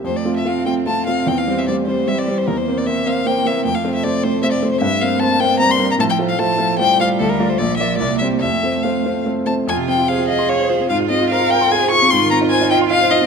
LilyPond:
<<
  \new Staff \with { instrumentName = "Violin" } { \time 3/4 \key f \major \tempo 4 = 149 c''16 d''8 e''16 f''8 g''8 a''8 f''8 | g''16 f''8 e''16 d''8 c''8 e''16 d''8 c''16 | bes'16 c''8 d''16 e''8 f''8 g''8 e''8 | g''16 f''8 e''16 d''8 c''8 e''16 d''8 c''16 |
e''8 f''8 a''8 g''8 bes''16 c'''8 bes''16 | a''16 g''8 f''16 a''4 g''8 f''8 | a'16 bes'8 c''16 d''8 e''8 d''8 e''8 | e''4 f''4 r8 a''8 |
\key f \minor aes''8 g''8 f''8 ees''8 des''8 c''8 | f''8 ees''8 f''8 g''8 aes''8 des'''8 | c'''8 bes''8 aes''8 g''8 f''8 ees''8 | }
  \new Staff \with { instrumentName = "Grand piano" } { \time 3/4 \key f \major f,8 <a c' f'>8 <a c' f'>8 <a c' f'>8 <a c' f'>8 <a c' f'>8 | e,8 <g c' c''>8 <g c' c''>8 <g c' c''>8 <g c' c''>8 <g c' c''>8 | e,8 <bes c' c''>8 <bes c' c''>8 <bes c' c''>8 <bes c' c''>8 <bes c' c''>8 | f,8 <a c' c''>8 <a c' c''>8 <a c' c''>8 <a c' c''>8 <a c' c''>8 |
g,8 <bes c' c''>8 <bes c' c''>8 <bes c' c''>8 <bes c' c''>8 <bes c' c''>8 | a,8 <a f' c''>8 <a f' c''>8 <a f' c''>8 <a f' c''>8 <a f' c''>8 | d,8 <a f' d''>8 bes,,8 <bes f' d''>8 c,8 <g c' c''>8 | f,8 <a c' c''>8 <a c' c''>8 <a c' c''>8 <a c' c''>8 <a c' c''>8 |
\key f \minor f,16 c16 c'16 f'16 c''16 f'16 f''16 c'''16 f''16 c''16 f'16 c'16 | aes,16 aes16 c'16 f'16 c''16 f'16 f''16 c'''16 f''16 c''16 f'16 c'16 | aes,16 ees16 c'16 ees'16 c''16 ees'16 ees''16 c'''16 ees''16 c''16 ees'16 c'16 | }
  \new Staff \with { instrumentName = "Cello" } { \time 3/4 \key f \major a4 c'4 c'4~ | c'4 a4 g4 | bes2 bes4 | a2. |
a2 g4 | f4 f4 g4~ | g4 f4 bes4 | a2~ a8 r8 |
\key f \minor f'4 aes'2 | f'4 bes'4 aes'4 | f'2. | }
>>